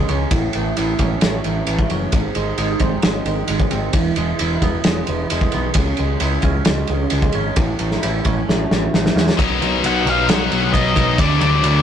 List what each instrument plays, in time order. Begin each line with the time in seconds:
Already playing: clean electric guitar C#3 G#3
0.09 picked electric bass C#2, clean electric guitar C#4, ride
0.31 picked electric bass A1, clean electric guitar A2, kick, ride
0.53 picked electric bass A1, clean electric guitar A3, ride
0.77 picked electric bass A1, clean electric guitar E4, ride
0.99 picked electric bass A1, clean electric guitar C#4, kick, ride
1.21 picked electric bass A1, clean electric guitar A3, snare, ride
1.44 picked electric bass A1, clean electric guitar E3, ride
1.67 picked electric bass A1, clean electric guitar A3, ride
1.79 kick
1.90 picked electric bass F#1, clean electric guitar C#4, ride
2.12 picked electric bass G#1, clean electric guitar G#2, kick, ride
2.35 picked electric bass G#1, clean electric guitar G#3, ride
2.58 picked electric bass G#1, clean electric guitar D#4, ride
2.79 picked electric bass G#1, clean electric guitar C4, kick, ride
3.02 picked electric bass G#1, clean electric guitar G#3, snare, ride
3.25 picked electric bass G#1, clean electric guitar D#3, ride
3.48 picked electric bass G#1, clean electric guitar G#3, ride
3.60 kick
3.71 picked electric bass G#1, clean electric guitar C4, ride
3.93 picked electric bass E1, clean electric guitar E3, kick, ride
4.16 picked electric bass E1, clean electric guitar G#3, ride
4.39 picked electric bass E1, clean electric guitar E4, ride
4.62 picked electric bass E1, clean electric guitar B3, kick, ride
4.84 picked electric bass E1, clean electric guitar G#3, snare, ride
5.07 picked electric bass E1, clean electric guitar E3, ride
5.30 picked electric bass E1, clean electric guitar G#3, ride
5.41 kick
5.52 picked electric bass B1, clean electric guitar B3, ride
5.74 picked electric bass C#2, clean electric guitar C#3, kick, ride
5.97 picked electric bass C#2, clean electric guitar G#3, ride
6.20 picked electric bass C#2, clean electric guitar E4, ride
6.42 picked electric bass C#2, clean electric guitar C#4, kick, ride
6.65 picked electric bass C#2, clean electric guitar G#3, snare, ride
6.87 picked electric bass C#2, clean electric guitar C#3, ride
7.10 picked electric bass C#2, clean electric guitar G#3, ride
7.22 kick
7.32 picked electric bass G#1, clean electric guitar C#4, ride
7.56 picked electric bass A1, clean electric guitar A2, kick, ride
7.79 picked electric bass A1, clean electric guitar A3, ride
7.91 snare
8.03 picked electric bass A1, clean electric guitar E4, ride
8.25 picked electric bass A1, clean electric guitar C#4, kick, ride
8.49 picked electric bass A1, clean electric guitar A3, snare
8.71 picked electric bass A1, clean electric guitar E3, snare
8.93 picked electric bass A1, clean electric guitar A3, snare
9.06 snare
9.15 picked electric bass E2, clean electric guitar C#4, snare
9.29 snare
9.38 picked electric bass B1, distorted electric guitar B2 F#3 B3 D#4, clean electric guitar B2, kick, ride
9.61 picked electric bass B1, clean electric guitar F#3, ride
9.83 picked electric bass B1, clean electric guitar B2, lead electric guitar F#5, ride
10.06 picked electric bass B1, clean electric guitar F#3, ride
10.10 lead electric guitar F5
10.29 picked electric bass B1, clean electric guitar B3, lead electric guitar F#5, snare, ride
10.50 picked electric bass B1, clean electric guitar F#3, ride
10.73 picked electric bass B1, clean electric guitar B3, lead electric guitar D#5, kick, ride
10.96 picked electric bass B1, clean electric guitar D#4, kick, ride
11.18 picked electric bass D2, distorted electric guitar D3 F#3 A3 D4, clean electric guitar D3, lead electric guitar D5, kick, ride
11.41 picked electric bass D2, clean electric guitar F#3, lead electric guitar D5, ride
11.63 picked electric bass D2, clean electric guitar D3, ride